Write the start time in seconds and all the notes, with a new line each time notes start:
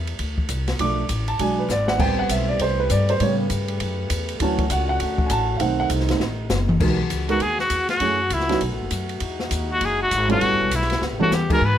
Already playing: E2
0.07 ride
0.19 D2, kick, ride
0.38 kick
0.49 C2, kick, hi-hat pedal, ride
0.68 snare, ride
0.79 B1 F3 A3 D4 D6, kick, ride
1.09 A1, kick, hi-hat pedal, ride
1.28 A5, ride
1.39 B1 F#3 G#3 D4 G#5, kick, ride
1.59 B4
1.68 G#1 D5, snare, hi-hat pedal
1.88 F#5, snare
1.98 A1 E3 G3 A3 B3 C4 G4 B4 G5, kick, crash
2.19 F#5
2.29 B1 E5, kick, hi-hat pedal, ride
2.49 D5
2.59 C2 C5, kick, ride
2.80 B4
2.90 G2 D5, kick, hi-hat pedal, ride
3.09 C5, ride
3.20 A2 C#3 G3 A3 B3 C#5, kick, ride
3.50 G2, kick, hi-hat pedal, ride
3.68 ride
3.80 F#2, kick, ride
4.10 E2, kick, hi-hat pedal, ride
4.29 ride
4.39 D2 E3 F#3 C#4 D4 F#4 A5, kick, ride
4.58 kick, ride
4.70 C#2 F#5, kick, hi-hat pedal, ride
4.89 F#5
5.00 D2, kick, ride
5.18 kick
5.26 A1 G#5, kick, hi-hat pedal, ride
5.31 A5
5.57 B1 C3 D#3 A3 D#4 F5, kick, ride
5.61 C4 F#5
5.80 F#5
5.90 C2, kick, hi-hat pedal, ride
6.00 snare
6.09 D#3 A3 C4, snare, ride
6.19 A1, snare
6.50 F#1, snare, hi-hat pedal
6.69 mid tom
6.79 B1 D#3 G#3 B3 D#4 F#4 A#4, kick, crash
7.10 C#2, kick, hi-hat pedal, ride
7.28 G#3 B3 D#4 F#4 A#4, ride
7.40 D#2 G#4, kick, ride
7.59 F#4, snare
7.70 E2, kick, hi-hat pedal, ride
7.89 F#4, snare, ride
7.99 F#2 E3 F#3 A3 C#4 E4 G#4, kick, ride
8.30 C#2 E4, kick, hi-hat pedal, ride
8.40 snare
8.49 F#3 B3 C#4 D#4 F#4, snare, ride
8.61 B1 D#3 B3 F#4, kick, ride
8.71 A1
8.82 F#1
8.91 F#2, kick, hi-hat pedal, ride
9.09 ride
9.20 E2 G#3 D#4 E4, kick, ride
9.40 snare
9.51 D#2, kick, hi-hat pedal, ride
9.72 F#4
9.81 F#1, kick, ride
9.85 G#4
10.03 F#4
10.11 G#1, kick, hi-hat pedal, ride
10.29 G3 B3 C#4 E4 F#4 A4, ride
10.41 A1 C#3 G3 A3 B3, kick, ride
10.51 G1
10.60 E1
10.71 B1, kick, hi-hat pedal, ride
10.75 E4
10.82 snare
10.90 snare, ride
11.01 C#2, snare
11.11 A1
11.19 G1 G3 B3 C#4 E4 F#4 A4, mid tom
11.30 E2 G4, snare, hi-hat pedal
11.50 G#3 B3 D#4 F#4 G#4 A#4, kick, crash
11.60 G#2 B2 G#3 A#3 F#4, kick
11.65 B4